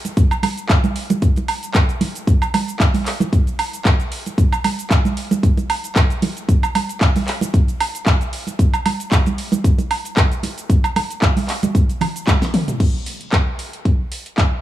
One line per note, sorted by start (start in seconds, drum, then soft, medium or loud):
0.05 closed hi-hat medium
0.05 muted conga soft
0.05 cabasa medium
0.17 kick loud
0.17 closed hi-hat medium
0.17 cabasa medium
0.31 closed hi-hat soft
0.31 cabasa soft
0.31 high woodblock medium
0.43 open hi-hat loud
0.43 high conga medium
0.43 high woodblock medium
0.58 closed hi-hat medium
0.58 cabasa medium
0.69 kick loud
0.69 clap loud
0.69 closed hi-hat medium
0.69 cabasa medium
0.84 closed hi-hat soft
0.84 high conga medium
0.84 cabasa soft
0.96 open hi-hat loud
1.10 closed hi-hat soft
1.10 muted conga medium
1.10 high conga medium
1.10 cabasa medium
1.22 kick loud
1.22 closed hi-hat medium
1.22 cabasa medium
1.36 closed hi-hat soft
1.36 muted conga medium
1.36 cabasa soft
1.48 open hi-hat loud
1.48 high woodblock medium
1.63 closed hi-hat medium
1.63 cabasa medium
1.74 kick loud
1.74 clap loud
1.74 closed hi-hat medium
1.74 cabasa medium
1.89 closed hi-hat soft
1.89 cabasa soft
2.01 open hi-hat loud
2.01 muted conga medium
2.01 high conga medium
2.15 closed hi-hat medium
2.15 cabasa medium
2.27 kick loud
2.27 closed hi-hat medium
2.27 cabasa medium
2.42 closed hi-hat soft
2.42 cabasa soft
2.42 high woodblock medium
2.54 open hi-hat loud
2.54 muted conga soft
2.54 high conga medium
2.54 high woodblock medium
2.68 closed hi-hat soft
2.68 cabasa medium
2.80 kick loud
2.80 clap loud
2.80 closed hi-hat medium
2.80 cabasa medium
2.94 open hi-hat medium
2.94 high conga medium
2.94 cabasa soft
3.06 clap medium
3.06 open hi-hat loud
3.20 closed hi-hat soft
3.20 muted conga medium
3.20 high conga medium
3.20 cabasa medium
3.33 kick loud
3.33 closed hi-hat medium
3.33 cabasa medium
3.47 closed hi-hat soft
3.47 cabasa soft
3.59 open hi-hat loud
3.59 high woodblock medium
3.73 closed hi-hat medium
3.73 cabasa medium
3.85 kick loud
3.85 clap loud
3.85 closed hi-hat medium
3.85 cabasa medium
4.00 closed hi-hat soft
4.00 cabasa soft
4.12 open hi-hat loud
4.26 closed hi-hat soft
4.26 muted conga soft
4.26 cabasa medium
4.38 kick loud
4.38 closed hi-hat medium
4.38 cabasa medium
4.53 closed hi-hat soft
4.53 cabasa soft
4.53 high woodblock medium
4.64 open hi-hat loud
4.64 high conga medium
4.64 high woodblock medium
4.79 closed hi-hat soft
4.79 cabasa medium
4.90 kick loud
4.90 clap loud
4.90 closed hi-hat medium
4.90 cabasa medium
5.05 closed hi-hat soft
5.05 high conga medium
5.05 cabasa soft
5.17 open hi-hat loud
5.31 closed hi-hat medium
5.31 muted conga medium
5.31 high conga medium
5.31 cabasa medium
5.43 kick loud
5.43 closed hi-hat medium
5.43 cabasa medium
5.57 closed hi-hat soft
5.57 muted conga soft
5.57 cabasa soft
5.70 open hi-hat loud
5.70 high woodblock medium
5.84 closed hi-hat soft
5.84 cabasa medium
5.96 kick loud
5.96 clap loud
5.96 closed hi-hat medium
5.96 cabasa medium
6.10 closed hi-hat soft
6.10 cabasa soft
6.22 open hi-hat loud
6.22 muted conga medium
6.22 high conga medium
6.37 closed hi-hat soft
6.37 cabasa medium
6.49 kick loud
6.49 closed hi-hat medium
6.49 cabasa medium
6.63 closed hi-hat soft
6.63 cabasa soft
6.63 high woodblock medium
6.75 open hi-hat loud
6.75 high conga medium
6.75 high woodblock medium
6.89 closed hi-hat medium
6.89 cabasa medium
7.01 kick loud
7.01 clap loud
7.01 closed hi-hat medium
7.01 cabasa medium
7.16 open hi-hat medium
7.16 high conga medium
7.16 cabasa soft
7.27 clap medium
7.27 open hi-hat loud
7.41 closed hi-hat medium
7.41 muted conga medium
7.41 cabasa medium
7.54 kick loud
7.54 closed hi-hat medium
7.54 cabasa medium
7.68 closed hi-hat soft
7.68 cabasa soft
7.80 open hi-hat loud
7.80 high woodblock medium
7.95 closed hi-hat medium
7.95 cabasa medium
8.06 kick loud
8.06 clap loud
8.06 closed hi-hat medium
8.06 cabasa medium
8.21 closed hi-hat soft
8.21 cabasa soft
8.33 open hi-hat loud
8.47 closed hi-hat medium
8.47 muted conga soft
8.47 cabasa medium
8.59 kick loud
8.59 closed hi-hat medium
8.59 cabasa medium
8.74 closed hi-hat soft
8.74 cabasa soft
8.74 high woodblock medium
8.86 open hi-hat loud
8.86 high conga medium
8.86 high woodblock medium
9.00 closed hi-hat medium
9.00 cabasa medium
9.12 kick loud
9.12 clap loud
9.12 closed hi-hat medium
9.12 cabasa medium
9.26 closed hi-hat soft
9.26 high conga medium
9.26 cabasa soft
9.38 open hi-hat loud
9.52 closed hi-hat medium
9.52 muted conga medium
9.52 high conga medium
9.52 cabasa medium
9.64 kick loud
9.64 closed hi-hat medium
9.64 cabasa medium
9.78 closed hi-hat soft
9.78 muted conga soft
9.78 cabasa soft
9.91 open hi-hat medium
9.91 high woodblock medium
10.05 closed hi-hat medium
10.05 cabasa medium
10.17 kick loud
10.17 clap loud
10.17 closed hi-hat medium
10.17 cabasa medium
10.32 closed hi-hat soft
10.32 cabasa soft
10.43 open hi-hat loud
10.43 muted conga medium
10.43 high conga medium
10.58 closed hi-hat medium
10.58 cabasa medium
10.70 kick loud
10.70 closed hi-hat medium
10.70 cabasa medium
10.84 closed hi-hat soft
10.84 cabasa soft
10.84 high woodblock medium
10.96 open hi-hat loud
10.96 muted conga soft
10.96 high conga medium
10.96 high woodblock medium
11.11 closed hi-hat medium
11.11 cabasa medium
11.22 kick loud
11.22 clap loud
11.22 closed hi-hat medium
11.22 cabasa medium
11.37 open hi-hat medium
11.37 high conga medium
11.37 cabasa soft
11.48 clap medium
11.48 open hi-hat loud
11.63 closed hi-hat medium
11.63 muted conga medium
11.63 high conga medium
11.63 cabasa medium
11.75 kick loud
11.75 closed hi-hat medium
11.75 cabasa medium
11.89 closed hi-hat soft
11.89 cabasa soft
12.01 open hi-hat loud
12.01 low conga medium
12.01 high woodblock medium
12.16 closed hi-hat medium
12.16 cabasa medium
12.27 kick loud
12.27 clap loud
12.27 closed hi-hat medium
12.27 high tom medium
12.27 cabasa medium
12.42 snare medium
12.42 closed hi-hat soft
12.42 cabasa soft
12.54 open hi-hat loud
12.54 mid tom medium
12.68 closed hi-hat medium
12.68 mid tom medium
12.68 muted conga soft
12.68 cabasa medium
12.80 kick loud
12.80 closed hi-hat medium
12.80 crash medium
13.06 open hi-hat loud
13.21 closed hi-hat medium
13.32 kick loud
13.32 clap loud
13.32 closed hi-hat medium
13.59 open hi-hat loud
13.73 closed hi-hat medium
13.85 kick loud
13.85 closed hi-hat soft
14.12 open hi-hat loud
14.26 closed hi-hat medium
14.38 kick loud
14.38 clap loud
14.38 closed hi-hat medium